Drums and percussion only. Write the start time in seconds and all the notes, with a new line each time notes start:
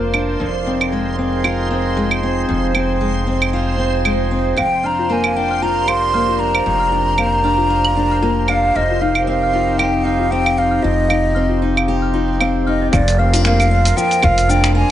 0.14 claves
0.81 claves
1.44 claves
2.11 claves
2.75 claves
3.42 claves
4.05 claves
4.58 claves
5.24 claves
5.88 claves
6.55 claves
7.18 claves
7.85 claves
8.48 claves
9.15 claves
9.79 claves
10.46 claves
11.10 claves
11.77 claves
12.41 claves
12.93 kick, claves, shaker
13.08 closed hi-hat, shaker
13.34 closed hi-hat, shaker
13.45 finger snap, shaker
13.60 closed hi-hat, claves, shaker
13.85 closed hi-hat, shaker
13.98 shaker
14.11 closed hi-hat, shaker
14.22 kick, claves
14.38 closed hi-hat, shaker
14.50 shaker
14.64 finger snap, closed hi-hat, shaker